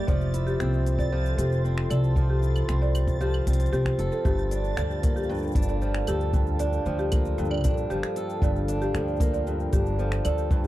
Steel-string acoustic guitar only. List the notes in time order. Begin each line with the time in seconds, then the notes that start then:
Already playing: G2 A#3 E4 G4
0.08 F3
0.34 E4
0.60 C4
1.12 F3
1.38 C4
1.64 C4
1.90 A4
2.16 F3
2.42 E4
2.68 C4
3.20 F3
3.47 C4
3.73 C4
3.99 A4
4.25 G2
4.51 D4
4.77 F3
5.03 A#3
5.29 G2
5.56 D4
5.81 F3
6.08 A4
6.34 G2
6.60 D4
6.86 F3
7.12 A#3
7.38 G2
7.64 D4
7.91 F3
8.17 A4
8.43 G2
8.69 D4
8.95 F3
9.21 A#3
9.47 G2
9.73 D4
9.99 F3
10.25 A4
10.51 G2